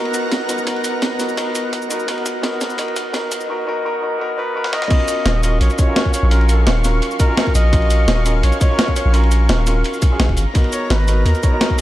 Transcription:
Already playing: B3 D#4 F#4 A#4 F#5 A#5
0.05 ride
0.14 closed hi-hat, ride, cabasa
0.32 kick, snare, closed hi-hat, ride
0.48 B3 D#4 F#4 A#4, closed hi-hat, ride, cabasa
0.58 D#1, cabasa
0.65 B3 D#4 F#4 A#4, kick, closed hi-hat, ride
0.76 ride
0.84 closed hi-hat, ride, cabasa
1.02 G#1, kick, snare, closed hi-hat, ride
1.18 B3 D#4 F#4 A#4, snare, closed hi-hat, ride, cabasa
1.29 cabasa
1.36 B3 D#4 F#4 A#4, kick, closed hi-hat, ride
1.55 closed hi-hat, ride, cabasa
1.73 kick, closed hi-hat
1.82 cabasa
1.89 D#1 B3 D#4 F#4 A#4, closed hi-hat, ride, cabasa
2.00 cabasa
2.06 B3 D#4 F#4 A#4, kick, closed hi-hat, ride
2.18 ride
2.26 kick, closed hi-hat, ride, cabasa
2.42 G#1 B3 D#4 F#4 A#4, kick, snare, closed hi-hat, ride
2.61 kick, snare, closed hi-hat, ride, cabasa
2.70 cabasa
2.77 D#2 B3 D#4 F#4 A#4, kick, closed hi-hat, ride
2.88 ride
2.96 kick, closed hi-hat, ride, cabasa
3.12 B3 D#4 F#4 A#4, kick, snare, closed hi-hat, ride
3.32 kick, closed hi-hat, ride, cabasa
3.41 D#1, cabasa
3.48 B3 D#4 F#4 A#4
3.65 B3 D#4 F#4 A#4
3.83 B3 D#4 F#4 A#4
4.01 B3 D#4 F#4 A#4
4.18 B3 D#4 F#4 A#4
4.36 B3 D#4 F#4 A#4 B4
4.54 B3 D#4 F#4 A#4
4.64 snare
4.71 B3 D#4 F#4 A#4 D#5, snare
4.82 snare
4.89 C#4 F4 F#4 A#4 F5 C#6, kick, closed hi-hat, crash, ride
5.00 ride
5.08 closed hi-hat, ride, cabasa
5.25 D#1, snare, closed hi-hat, ride
5.42 C#4 F4 F#4 A#4 D#5, closed hi-hat, ride, cabasa
5.61 A#1 C#5, closed hi-hat, ride
5.70 D#5, ride, cabasa
5.78 C#4 F4 F#4 C#5 D#5, kick, closed hi-hat, cabasa
5.86 C#4 F4 F#4 A#4
5.96 snare, closed hi-hat, ride
6.05 kick
6.14 C#5, closed hi-hat, ride, cabasa
6.23 A#1
6.30 C#4 F4 F#4 A#4, closed hi-hat, ride
6.41 ride
6.49 closed hi-hat, ride, cabasa
6.67 D#1, snare, closed hi-hat, ride
6.84 C#4 F4 F#4 A#4, snare, closed hi-hat, ride, cabasa
7.02 closed hi-hat, ride
7.11 cabasa
7.19 C#4 F4 F#4 A#4 D#5, kick, closed hi-hat, ride, cabasa
7.27 C#4 F4 F#4 A#4
7.37 snare, closed hi-hat, ride
7.47 kick
7.55 A#1 D#5, closed hi-hat, ride, cabasa
7.71 C#4 F4 F#4 A#4, kick, closed hi-hat, ride
7.82 ride
7.90 closed hi-hat, ride, cabasa
8.08 D#1, snare, closed hi-hat, ride
8.25 C#4 F4 F#4 A#4 D#5, closed hi-hat, ride, cabasa
8.43 A#1 C#5, closed hi-hat, ride
8.52 ride, cabasa
8.60 C#4 F4 F#4 C#5 D#5, kick, closed hi-hat, ride, cabasa
8.69 C#4 F4 F#4 A#4
8.79 snare, closed hi-hat, ride
8.88 kick
8.96 C#5, closed hi-hat, ride, cabasa
9.06 A#1
9.12 C#4 F4 F#4 A#4, closed hi-hat, ride
9.23 ride
9.31 closed hi-hat, ride, cabasa
9.49 D#1, snare, closed hi-hat, ride
9.66 C#4 F4 F#4 A#4, snare, closed hi-hat, ride, cabasa
9.84 closed hi-hat, ride
9.94 cabasa
10.02 kick, closed hi-hat, ride, cabasa
10.11 C#4 F4 F#4 G#4
10.20 A#1, snare, closed hi-hat, ride
10.29 D#1, kick
10.37 G#1 A#5, closed hi-hat, ride, cabasa
10.54 B3 D#4 F#4 A#4, kick, closed hi-hat, ride
10.64 ride
10.73 C#5, closed hi-hat, ride, cabasa
10.90 G#1 B4, snare, closed hi-hat, ride
11.07 B3 D#4 F#4 A#4, closed hi-hat, ride, cabasa
11.26 D#2 A#4, closed hi-hat, ride
11.35 ride, cabasa
11.43 B3 D#4 F#4 C#5, kick, closed hi-hat, cabasa
11.51 B3 D#4 F#4 A#4
11.61 snare, closed hi-hat, ride
11.70 kick

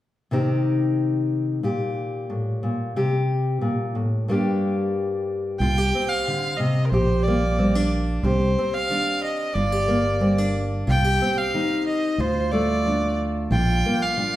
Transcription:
0.31 C3 D#3 C4 D#4 G4
1.63 A#2 G4
2.30 A2
2.63 A#2
2.96 C3 G4
3.61 A#2
3.95 A2
4.28 G2 G3 A#3 D4 G4
5.60 C2 C3 F4 G5
5.78 G4
5.95 C4
6.09 F5
6.27 D3
6.57 C3 D#5
6.85 A#4
6.90 A#1 A#2 G4 C5
7.23 D5
7.27 A#3
7.58 G3 C4
7.75 D4
8.23 C2 C3 G4 C5
8.58 C4
8.74 F5
8.90 D#3 D4
9.24 D#5
9.54 G1 G2 F4 D5
9.72 G4
9.88 A#3
10.20 G3 C4
10.38 D4
10.87 C2 C3 F4 G5
11.04 G4
11.22 C4
11.38 F5
11.54 D#3 D#4
11.87 D#5
12.18 D2 D3 F4 C5
12.52 A3 D5
12.86 F3 D4
13.50 A#1 A#2 F4 G5
13.86 A#3
14.02 F5
14.17 F3 D4

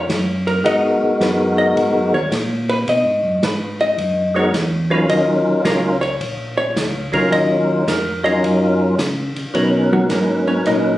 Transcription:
Already playing: C#5
0.09 F#2, kick, snare, hi-hat pedal, ride
0.47 A#4, ride
0.64 G#2 G#3 B3 D#4 F#4 A#4 D#5, kick, ride
1.01 G#2
1.20 F#2 B4, kick, snare, hi-hat pedal, ride
1.58 D#5
1.76 G#2, kick, ride
1.93 F#2
2.12 D#2 C#5
2.31 A#2, kick, snare, hi-hat pedal, ride
2.69 B4, ride
2.87 B2 D#5, kick, ride
3.04 G#2
3.23 F#2
3.42 G#2 B4, kick, snare, hi-hat pedal, ride
3.80 D#5, ride
3.98 F#2, kick, ride
4.35 G#3 B3 D#4 F#4 A#4 C#5
4.53 E2, kick, snare, hi-hat pedal, ride
4.90 F#3 C#4 D#4 F4 A#4 B4
5.09 D#2 D#5, kick, ride
5.46 D#2
5.64 C#2 F#3 C#4 D#4 F4 A#4, kick, snare, hi-hat pedal, ride
6.01 C#5, ride
6.20 A#1, kick, ride
6.57 C#5
6.76 C#2, kick, snare, hi-hat pedal, ride
7.12 F#3 C#4 D#4 F4 A#4, kick, ride
7.32 D#2 D#5, kick, ride
7.87 F2 A#4, kick, snare, hi-hat pedal, ride
8.24 F#3 C#4 D#4 F4 A#4 D#5, ride
8.43 F#2, kick, ride
8.98 C#3, kick, snare, hi-hat pedal, ride
9.36 C#3, ride
9.54 B2 F#3 C#4 D#4 A#4 B4, kick, ride
9.93 F#3 F#4
10.10 G#2 A#3 A#4, kick, snare, hi-hat pedal, ride
10.47 C#4 C#5
10.65 A#2 D#4 D#5, kick, ride

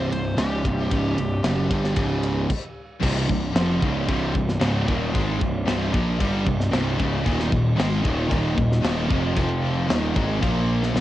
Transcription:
Already playing: C1 G2 C3
0.10 C1 C2 G2 C5, ride
0.37 C#1 C#2 G#2 C#3 G4, snare, ride
0.62 C1 C2 G2 C3, kick, snare, ride
0.89 C#1 C#2 G#2 C#3, kick, ride
1.16 C1 C2 G2, ride
1.43 F#1 F#2 C#3 F#3, snare, ride
1.68 G1 G2 D3 G3, kick, ride
1.84 snare
1.93 C#2 G#2 C#3, kick, ride
1.97 C#1
2.23 ride
2.50 kick, crash
3.00 C1 C2 G2 C3, kick, crash
3.27 C1 C2 G2, kick
3.52 F1 F2 C3 F3, snare, crash
3.77 C#2 G#2 C#3
3.82 C#1 C#2 C#3, kick
4.05 C1 C2 G2 C3, kick, crash
4.09 G2
4.33 C1 C2 G2, kick
4.49 snare
4.59 C#1 C#2 G#2 C#3, snare, crash
4.85 D#1 D#2 A#2 D#3, kick
5.12 G#1 G#2 D#3 G#3, kick, crash
5.40 C1 C2 G2, kick
5.65 C1 C2 G2 C3, snare, crash
5.92 A#1 A#2 F3 A#3, kick
6.19 G1 G2 D3 G3, kick, crash
6.46 C1 C2 G2, kick
6.60 snare
6.73 C1 C2 G2 C3, snare, crash
6.99 C#1 C#2 G#2 C#3, kick
7.25 D#1 D#2 A#2 D#3 A#3 F4 D#5, kick, crash
7.40 snare
7.51 D#1 D#2 A#2, kick
7.76 G#1 G#2 D#3 G#3, snare, crash
8.02 D#1 D#2 A#2 D#3, kick
8.27 D#1 D#2 A#2 D#3, kick
8.32 crash
8.55 D#1 D#2 A#2, kick
8.72 snare
8.80 D#1 D#2 A#2 D#3
8.85 snare, crash
9.08 F1 F2 C3 F3, kick
9.33 F1 F2 C3 F3 C4, kick
9.37 F3 G4 F5, crash
9.87 D#1 D#2 A#2 D#3 D#5, snare, crash
9.91 A#3 F4
10.12 G#1 G#2 D#3 G#3, kick
10.38 A#2 F3 A#3 A#4
10.43 A#1 A#3, kick, crash
10.83 snare
10.93 A#1 A#2 D#3 F3 A#3 D#5, snare

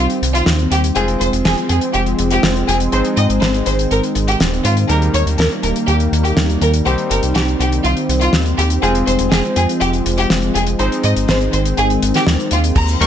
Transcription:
Already playing: D#3 G3 C4 D#4 C5
0.10 closed hi-hat
0.22 C2, closed hi-hat
0.34 F4, closed hi-hat
0.46 D#2, snare, closed hi-hat
0.59 closed hi-hat
0.71 D#2 G4, closed hi-hat
0.84 closed hi-hat
0.96 F1 F3 G#3 C4 F4 G#4 C5, closed hi-hat
1.08 closed hi-hat
1.20 F1 C5, closed hi-hat
1.33 F1, closed hi-hat
1.45 F1 G#4, snare, closed hi-hat
1.57 closed hi-hat
1.69 F2 G#4, closed hi-hat
1.81 closed hi-hat
1.94 F1 G4, closed hi-hat
2.06 closed hi-hat
2.19 F1, closed hi-hat
2.31 G4, closed hi-hat
2.43 F1, snare, closed hi-hat
2.56 closed hi-hat
2.68 F1 G#4, closed hi-hat
2.80 closed hi-hat
2.92 G#1 D#3 G#3 C4 D#4 C5, closed hi-hat
3.05 closed hi-hat
3.17 G#2 D#5, closed hi-hat
3.30 G#1, closed hi-hat
3.42 G#1 C5, snare, closed hi-hat
3.54 closed hi-hat
3.66 G#1 C5, closed hi-hat
3.79 closed hi-hat
3.91 G#1 A#4, closed hi-hat
4.03 closed hi-hat
4.15 G#1, closed hi-hat
4.28 G4, closed hi-hat
4.40 D#1, snare, closed hi-hat
4.53 closed hi-hat
4.65 G#2 F4, closed hi-hat
4.77 closed hi-hat
4.89 D#2 G3 A#3 D#4 A#4, closed hi-hat
5.02 closed hi-hat
5.14 D#2 C#5, closed hi-hat
5.26 D#2, closed hi-hat
5.38 D#2 A#4, snare, closed hi-hat
5.51 closed hi-hat
5.63 D#1 A#4, closed hi-hat
5.76 closed hi-hat
5.88 D#2 G4, closed hi-hat
6.00 closed hi-hat
6.12 D#2, closed hi-hat
6.25 G4, closed hi-hat
6.37 D#2, snare, closed hi-hat
6.50 closed hi-hat
6.61 D#2 A#4, closed hi-hat
6.74 closed hi-hat
6.86 C2 G3 C4 D#4 G4 C5, closed hi-hat
6.98 closed hi-hat
7.11 G1 A#4, closed hi-hat
7.23 C2, closed hi-hat
7.35 C2 G4, snare, closed hi-hat
7.48 closed hi-hat
7.60 C2 G4, closed hi-hat
7.72 closed hi-hat
7.84 C2 F4, closed hi-hat
7.97 closed hi-hat
8.09 C2, closed hi-hat
8.21 F4, closed hi-hat
8.33 D#2, snare, closed hi-hat
8.46 closed hi-hat
8.58 D#2 G4, closed hi-hat
8.70 closed hi-hat
8.83 F1 F3 G#3 C4 F4 G#4 C5, closed hi-hat
8.95 closed hi-hat
9.07 F1 C5, closed hi-hat
9.19 F1, closed hi-hat
9.32 F1 G#4, snare, closed hi-hat
9.45 closed hi-hat
9.56 F2 G#4, closed hi-hat
9.69 closed hi-hat
9.81 F1 G4, closed hi-hat
9.93 closed hi-hat
10.06 F1, closed hi-hat
10.18 G4, closed hi-hat
10.30 F1, snare, closed hi-hat
10.42 closed hi-hat
10.55 F1 G#4, closed hi-hat
10.67 closed hi-hat
10.79 G#1 D#3 G#3 C4 D#4 C5, closed hi-hat
10.92 closed hi-hat
11.04 G#2 D#5, closed hi-hat
11.16 G#1, closed hi-hat
11.29 G#1 C5, snare, closed hi-hat
11.41 closed hi-hat
11.53 G#1 C5, closed hi-hat
11.66 closed hi-hat
11.77 G#1 G#4, closed hi-hat
11.90 closed hi-hat
12.02 G#1, closed hi-hat
12.14 G4, snare, closed hi-hat
12.27 D#2, snare, closed hi-hat
12.40 closed hi-hat
12.51 D#2 F4, closed hi-hat
12.64 closed hi-hat
12.76 D#2 D#3 G3 A#3 A#5, kick, closed hi-hat, crash, cabasa
12.88 closed hi-hat, cabasa
13.01 D#2 G3 A#3 D#4 A#4 C#6, closed hi-hat

